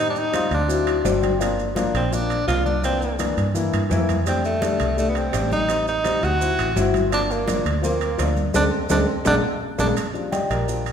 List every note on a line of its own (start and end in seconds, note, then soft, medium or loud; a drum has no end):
0.00 0.46 A2 medium
0.00 0.22 G3 medium
0.00 0.23 C4 medium
0.00 0.23 D#4 medium
0.10 0.21 D4 medium
0.16 0.53 D#4 loud
0.16 high conga soft
0.16 maracas soft
0.32 0.58 G3 medium
0.32 0.59 C4 medium
0.32 0.59 F4 medium
0.32 high conga medium
0.32 high timbale medium
0.32 low timbale medium
0.32 maracas medium
0.51 1.01 D2 medium
0.51 1.20 D4 medium
0.51 high timbale medium
0.51 maracas soft
0.68 0.94 F#3 medium
0.68 0.94 C4 medium
0.68 0.94 E4 medium
0.68 high conga soft
0.68 maracas medium
0.87 high conga soft
0.87 high timbale medium
0.87 maracas soft
1.03 1.88 G1 medium
1.03 1.29 F#3 medium
1.03 1.30 C4 medium
1.03 1.30 D4 loud
1.03 1.22 D5 medium
1.03 high conga medium
1.03 low timbale medium
1.03 maracas medium
1.22 1.39 G5 medium
1.22 high conga medium
1.22 high timbale medium
1.22 maracas soft
1.39 1.65 F3 medium
1.39 1.66 A#3 medium
1.39 1.66 D4 medium
1.39 high conga soft
1.39 high timbale medium
1.39 maracas medium
1.59 high conga soft
1.59 maracas soft
1.75 2.01 F3 medium
1.75 2.02 A#3 medium
1.75 2.02 D4 loud
1.75 high conga medium
1.75 high timbale medium
1.75 low timbale medium
1.75 maracas medium
1.94 2.44 A#1 medium
1.94 2.15 C4 medium
1.94 high timbale medium
1.94 maracas soft
2.12 2.37 F3 medium
2.12 2.38 A#3 medium
2.12 2.47 D4 loud
2.12 2.38 D4 medium
2.12 high conga soft
2.12 maracas medium
2.30 high conga soft
2.30 high timbale medium
2.30 maracas soft
2.47 3.32 C2 medium
2.47 2.73 F3 medium
2.47 2.73 A#3 medium
2.47 2.74 D4 medium
2.47 2.65 F4 loud
2.47 high conga soft
2.47 high timbale medium
2.47 low timbale medium
2.47 maracas medium
2.66 2.82 D4 medium
2.66 high conga medium
2.66 maracas soft
2.83 3.08 E3 medium
2.83 3.09 A#3 medium
2.83 3.17 C4 medium
2.83 3.09 D4 medium
2.83 high conga soft
2.83 high timbale medium
2.83 maracas medium
3.02 high conga soft
3.02 maracas soft
3.19 3.44 E3 medium
3.19 3.44 A#3 medium
3.19 3.45 D4 medium
3.19 high conga medium
3.19 high timbale medium
3.19 low timbale medium
3.19 maracas medium
3.37 3.70 G2 medium
3.37 high timbale medium
3.37 maracas soft
3.54 3.80 E3 medium
3.54 3.80 A#3 medium
3.54 3.81 E4 medium
3.54 high conga soft
3.54 maracas medium
3.73 3.90 G2 medium
3.73 high conga soft
3.73 high timbale medium
3.73 maracas soft
3.90 4.74 F2 medium
3.90 4.15 E3 medium
3.90 4.16 A#3 medium
3.90 4.16 E4 loud
3.90 high conga medium
3.90 low timbale medium
3.90 maracas medium
4.09 high conga medium
4.09 high timbale medium
4.09 maracas soft
4.26 4.51 G3 medium
4.26 4.51 A3 medium
4.26 4.44 C4 medium
4.26 4.52 D4 medium
4.26 high conga soft
4.26 high timbale medium
4.26 maracas medium
4.44 4.95 A3 medium
4.44 high conga soft
4.44 maracas soft
4.61 4.86 G3 medium
4.61 4.87 A3 medium
4.61 4.87 D4 medium
4.61 high conga medium
4.61 high timbale medium
4.61 low timbale medium
4.61 maracas medium
4.80 5.30 C2 medium
4.80 high conga soft
4.80 high timbale medium
4.80 maracas soft
4.97 5.22 G3 medium
4.97 5.23 A3 medium
4.97 5.11 A3 medium
4.97 5.23 D4 medium
4.97 high conga soft
4.97 maracas medium
5.09 5.19 B3 medium
5.15 5.52 C4 medium
5.15 high conga soft
5.15 high timbale medium
5.15 maracas soft
5.32 6.17 A1 medium
5.32 5.58 G3 medium
5.32 5.58 A3 medium
5.32 5.59 D4 medium
5.32 high conga soft
5.32 high timbale medium
5.32 low timbale medium
5.32 maracas medium
5.52 5.85 D#4 medium
5.52 high conga medium
5.52 maracas soft
5.68 5.94 G3 medium
5.68 5.94 C4 medium
5.68 5.95 D#4 medium
5.68 high conga soft
5.68 high timbale medium
5.68 maracas medium
5.87 6.25 D#4 loud
5.87 high conga soft
5.87 maracas soft
6.04 6.29 G3 medium
6.04 6.30 C4 medium
6.04 6.30 D#4 medium
6.04 high conga medium
6.04 high timbale medium
6.04 low timbale medium
6.04 maracas medium
6.23 6.56 D2 medium
6.23 6.95 F#4 loud
6.23 high timbale medium
6.23 maracas soft
6.40 6.65 F#3 medium
6.40 6.66 C4 medium
6.40 6.66 E4 medium
6.40 high conga soft
6.40 maracas medium
6.59 6.75 A1 medium
6.59 high conga soft
6.59 high timbale medium
6.59 maracas soft
6.76 7.60 G1 medium
6.76 7.01 F#3 medium
6.76 7.01 C4 medium
6.76 7.02 E4 loud
6.76 high conga medium
6.76 low timbale medium
6.76 maracas medium
6.94 high conga medium
6.94 high timbale medium
6.94 maracas soft
7.10 7.36 F3 medium
7.10 7.37 A#3 medium
7.10 7.37 D4 medium
7.10 7.33 D4 medium
7.10 high conga soft
7.10 high timbale loud
7.10 maracas medium
7.30 7.66 A#3 loud
7.30 high conga soft
7.30 maracas soft
7.46 7.72 F3 medium
7.46 7.72 A#3 medium
7.46 7.73 D4 medium
7.46 high conga loud
7.46 high timbale medium
7.46 low timbale medium
7.46 maracas medium
7.65 8.15 D2 medium
7.65 high conga soft
7.65 high timbale medium
7.65 maracas soft
7.82 8.07 F3 medium
7.82 8.08 A#3 medium
7.82 8.25 A#3 medium
7.82 8.08 C4 medium
7.82 high conga soft
7.82 maracas medium
8.01 high conga soft
8.01 high timbale medium
8.01 maracas soft
8.18 8.52 D2 medium
8.18 8.43 F3 medium
8.18 8.44 A#3 medium
8.18 8.44 D4 medium
8.18 high conga soft
8.18 high timbale medium
8.18 low timbale medium
8.18 maracas medium
8.36 high conga medium
8.36 maracas soft
8.54 8.68 D2 medium
8.54 8.66 G#3 medium
8.54 8.66 C4 medium
8.54 8.65 D4 medium
8.54 8.64 D4 medium
8.54 high conga medium
8.54 high timbale medium
8.54 maracas medium
8.89 9.03 D2 loud
8.89 9.01 G#3 medium
8.89 9.01 C4 medium
8.89 9.01 D4 loud
8.89 9.00 D4 medium
8.89 high conga loud
8.89 high timbale medium
8.89 maracas loud
9.25 9.39 A#1 medium
9.25 9.37 G#3 medium
9.25 9.37 A#3 loud
9.25 9.37 D4 medium
9.25 9.35 D4 loud
9.25 high conga medium
9.25 high timbale loud
9.25 maracas loud
9.78 9.92 A#1 medium
9.78 9.90 G#3 medium
9.78 9.90 A#3 medium
9.78 9.90 D4 medium
9.78 9.88 D4 medium
9.78 high conga medium
9.78 high timbale medium
9.78 maracas medium
9.97 high conga soft
9.97 high timbale medium
9.97 maracas medium
10.14 10.66 F3 medium
10.14 10.67 G3 soft
10.14 10.49 D4 medium
10.14 high conga soft
10.14 maracas soft
10.32 10.49 G4 medium
10.32 10.49 D5 medium
10.32 10.50 D#5 medium
10.32 10.50 G5 medium
10.32 high conga medium
10.32 high timbale medium
10.32 low timbale medium
10.32 maracas medium
10.50 10.92 A#1 medium
10.50 10.67 D4 medium
10.50 10.92 G4 medium
10.50 10.92 A#4 medium
10.50 10.92 D5 medium
10.50 high conga soft
10.50 high timbale medium
10.50 maracas soft
10.68 10.84 F3 soft
10.68 10.84 G3 soft
10.68 10.85 D4 soft
10.68 high conga soft
10.68 maracas medium
10.86 high conga soft
10.86 high timbale medium
10.86 maracas soft